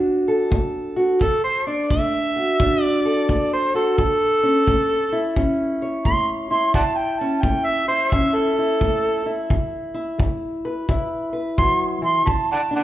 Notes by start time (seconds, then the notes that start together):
Already playing: A2 D4 F#4
0.28 A4
0.51 A3, kick
0.96 F#4
1.21 D3 A4, kick
1.44 C5
1.66 D4 D5
1.90 A3 E5, kick
2.36 F#4
2.59 A2 D4, kick
2.83 D5
3.05 A4
3.29 A3 D5, kick
3.53 C5
3.74 F#4 A4
3.98 A2 A4, kick
4.43 C#4
4.67 A3, kick
5.12 E4
5.36 E3 C#4, kick
5.82 C#5
6.05 A3 C6, kick
6.51 E4 C6
6.74 A2 D5 F#5 A5, kick
6.97 G5
7.19 C#4 A5
7.42 A3 G5, kick
7.65 E5
7.88 E4 C5
8.12 E3 C#4 E5, kick
8.35 A4
8.58 E4
8.81 A3, kick
9.26 E4
9.50 E3, kick
9.94 E4
10.18 G#3, kick
10.65 B4
10.88 B2 E4, kick
11.33 B4
11.58 F#3 C6, kick
12.02 E3 C6
12.26 D3 A5, kick
12.52 D5 F#5 A5
12.71 D4
12.76 D5 F#5 A5